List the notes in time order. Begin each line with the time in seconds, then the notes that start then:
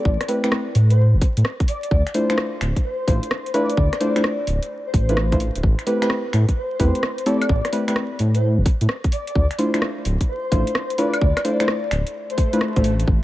Already playing: D5
0.05 A1, kick
0.21 finger snap, cross-stick, closed hi-hat
0.28 A3 C4 E4 G4 B4, open hi-hat
0.44 A3 C4 E4 G4 B4, finger snap, closed hi-hat
0.52 cross-stick
0.75 A2, open hi-hat
0.90 C5, closed hi-hat
1.14 E1
1.21 kick, open hi-hat
1.37 A2, closed hi-hat
1.45 cross-stick
1.60 kick, closed hi-hat
1.68 D5, open hi-hat
1.83 D5, closed hi-hat
1.91 D2 D5, kick
2.07 finger snap, closed hi-hat
2.14 A3 D4 E4 F4 C5, open hi-hat
2.30 A3 D4 E4 F4 C5, finger snap, closed hi-hat
2.38 cross-stick
2.61 D1, finger snap, open hi-hat
2.76 kick, closed hi-hat
2.84 C5
3.07 A1 A3 D4 E4 F4 C5, kick, open hi-hat
3.23 closed hi-hat
3.31 cross-stick
3.46 closed hi-hat
3.54 A3 D4 E4 F4 B4 D5, open hi-hat
3.70 closed hi-hat
3.77 D2, kick
3.93 finger snap, cross-stick, closed hi-hat
4.01 A3 D4 E4 F4 C5 D5, open hi-hat
4.16 A3 D4 E4 F4 C5, finger snap, closed hi-hat
4.24 cross-stick
4.47 D1, open hi-hat
4.63 closed hi-hat
4.86 C5
4.94 A1, kick, open hi-hat
5.09 A3 D4 E4 F4 B4, closed hi-hat
5.17 cross-stick
5.32 A3 D4 E4 F4 C5, kick, closed hi-hat
5.40 open hi-hat
5.56 D1, closed hi-hat
5.63 A1, kick
5.79 finger snap, closed hi-hat
5.87 A3 C4 E4 G4 B4, open hi-hat
6.02 A3 C4 E4 G4 B4, finger snap, closed hi-hat
6.10 cross-stick
6.33 A2, finger snap, open hi-hat
6.49 kick, closed hi-hat
6.56 C5
6.80 E2 A3 C4 E4 G4 B4, kick, open hi-hat
6.95 closed hi-hat
7.03 cross-stick
7.18 closed hi-hat
7.26 A3 C4 E4 G4 A4 D5, open hi-hat
7.42 closed hi-hat, high woodblock
7.49 A1, kick
7.65 finger snap, cross-stick, closed hi-hat
7.73 A3 C4 E4 G4 B4, open hi-hat
7.88 A3 C4 E4 G4 B4, finger snap, closed hi-hat
7.96 cross-stick
8.19 A2, open hi-hat
8.35 C5, closed hi-hat
8.58 E1
8.66 kick, open hi-hat
8.81 A2, closed hi-hat
8.89 cross-stick
9.04 kick, closed hi-hat
9.12 D5, open hi-hat
9.27 D5, closed hi-hat
9.35 D2 D5, kick
9.51 finger snap, closed hi-hat
9.59 A3 D4 E4 F4 C5, open hi-hat
9.74 A3 D4 E4 F4 C5, finger snap, closed hi-hat
9.82 cross-stick
10.05 D1, open hi-hat
10.21 kick, closed hi-hat
10.29 C5
10.52 A1 A3 D4 E4 F4 C5, kick, open hi-hat
10.67 closed hi-hat
10.75 cross-stick
10.90 closed hi-hat
10.98 A3 D4 E4 F4 B4 D5, open hi-hat
11.14 closed hi-hat, high woodblock
11.21 D2, kick
11.37 finger snap, cross-stick, closed hi-hat, high woodblock
11.45 A3 D4 E4 F4 C5 D5, open hi-hat
11.60 A3 D4 E4 F4 C5, finger snap, closed hi-hat
11.68 cross-stick
11.91 D1, finger snap, open hi-hat
12.07 closed hi-hat
12.15 swell
12.30 C5, closed hi-hat
12.38 kick, open hi-hat
12.53 A3 D4 E4 F4 B4, closed hi-hat
12.61 cross-stick
12.76 A1 A3 D4 E4 F4 C5, kick, closed hi-hat
12.84 open hi-hat
13.00 closed hi-hat
13.08 A1, kick